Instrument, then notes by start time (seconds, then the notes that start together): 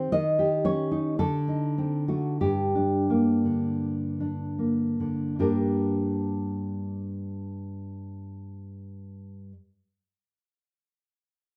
nylon-string guitar
Already playing: C4 G4 C5
0.12 D#3 D#5
0.39 G4
0.65 C#4 C#5
0.91 D#4
1.19 D3 A4
1.48 D#4
1.78 C4
2.08 A3 F#4
2.41 G2 G4
2.75 D4
3.10 A#3
3.45 D3
4.20 D4
4.59 A#3
5.00 D3
5.39 G2 A#3 D4 G4 A#4